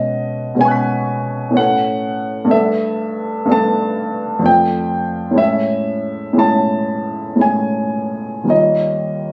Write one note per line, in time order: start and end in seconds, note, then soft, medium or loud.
0.00 0.53 B2 soft
0.00 0.54 G#3 soft
0.00 0.56 C#4 soft
0.00 0.58 F#4 soft
0.00 0.59 B4 soft
0.00 0.62 D#5 medium
0.55 1.51 B2 soft
0.55 1.52 G#3 soft
0.55 1.52 C#4 soft
0.59 1.53 F#4 soft
0.59 1.54 B4 soft
0.59 1.57 G#5 medium
0.65 1.55 C#6 soft
0.65 1.56 F#6 soft
0.71 1.58 B6 soft
1.50 2.45 A2 soft
1.50 2.45 A3 soft
1.50 2.46 C#4 soft
1.55 2.47 A4 soft
1.55 2.48 B4 soft
1.55 2.51 F#5 medium
2.45 3.44 G2 soft
2.45 3.45 A3 soft
2.45 3.47 D4 soft
2.49 3.48 A4 soft
2.49 3.50 B4 soft
2.49 3.53 E5 medium
3.45 4.40 G2 soft
3.45 4.39 A3 soft
3.45 4.40 D4 soft
3.50 4.42 A4 soft
3.50 4.43 B4 soft
3.50 4.46 A5 medium
4.39 5.32 F2 soft
4.39 5.33 A3 soft
4.39 5.33 D4 soft
4.44 5.34 F4 soft
4.44 5.35 C5 soft
4.44 5.38 G5 medium
5.31 6.32 A2 soft
5.31 6.33 G#3 soft
5.31 6.34 C#4 soft
5.36 6.36 E4 soft
5.36 6.37 C#5 soft
5.36 6.40 E5 medium
6.33 7.34 A2 soft
6.33 7.35 G#3 soft
6.33 7.36 C#4 soft
6.38 7.38 E4 soft
6.38 7.39 C#5 soft
6.38 7.42 A5 medium
7.35 8.43 A2 soft
7.35 8.44 G#3 soft
7.35 8.45 C#4 soft
7.35 8.45 E4 soft
7.41 8.46 C#5 soft
7.41 8.50 G#5 medium
8.44 9.32 D#2 soft
8.44 9.32 G3 soft
8.44 9.32 A#3 soft
8.48 9.32 F4 soft
8.48 9.32 C#5 soft
8.48 9.32 D#5 medium